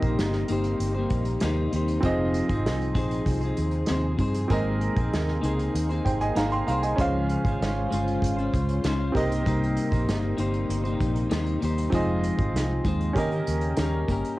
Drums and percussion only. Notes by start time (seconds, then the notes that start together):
0.03 kick, closed hi-hat
0.19 snare, closed hi-hat
0.33 snare, closed hi-hat
0.48 closed hi-hat
0.64 closed hi-hat
0.80 closed hi-hat
1.10 kick, closed hi-hat
1.25 closed hi-hat
1.40 snare, closed hi-hat
1.73 closed hi-hat
1.88 closed hi-hat
2.03 kick, closed hi-hat
2.34 closed hi-hat
2.49 kick, closed hi-hat
2.66 snare, closed hi-hat
2.82 closed hi-hat
2.95 kick, closed hi-hat
3.11 closed hi-hat
3.26 kick, closed hi-hat
3.41 closed hi-hat
3.57 closed hi-hat
3.71 closed hi-hat
3.86 snare, closed hi-hat
4.19 kick, closed hi-hat
4.34 closed hi-hat
4.50 kick, closed hi-hat
4.81 closed hi-hat
4.97 kick, closed hi-hat
5.13 snare, closed hi-hat
5.28 snare
5.43 closed hi-hat
5.59 closed hi-hat
5.75 closed hi-hat
5.90 closed hi-hat
6.06 kick, closed hi-hat
6.21 closed hi-hat
6.36 snare, closed hi-hat
6.52 closed hi-hat
6.68 closed hi-hat
6.83 closed hi-hat
6.98 kick, closed hi-hat
7.29 closed hi-hat
7.45 kick, closed hi-hat
7.62 snare, closed hi-hat
7.92 closed hi-hat
8.08 closed hi-hat
8.22 kick, closed hi-hat
8.38 closed hi-hat
8.54 kick, closed hi-hat
8.69 closed hi-hat
8.84 snare, closed hi-hat
9.15 kick, closed hi-hat
9.32 closed hi-hat
9.46 kick, closed hi-hat
9.63 closed hi-hat
9.77 closed hi-hat
9.92 kick, closed hi-hat
10.09 snare, closed hi-hat
10.38 closed hi-hat
10.54 closed hi-hat
10.70 closed hi-hat
10.85 closed hi-hat
11.01 kick, closed hi-hat
11.16 closed hi-hat
11.31 snare, closed hi-hat
11.46 closed hi-hat
11.62 closed hi-hat
11.78 closed hi-hat
11.92 kick, closed hi-hat
12.24 closed hi-hat
12.39 kick, closed hi-hat
12.56 snare, closed hi-hat
12.85 kick, closed hi-hat
13.01 closed hi-hat
13.16 kick, closed hi-hat
13.32 closed hi-hat
13.47 closed hi-hat
13.61 closed hi-hat
13.77 snare, closed hi-hat
14.08 kick, closed hi-hat
14.25 closed hi-hat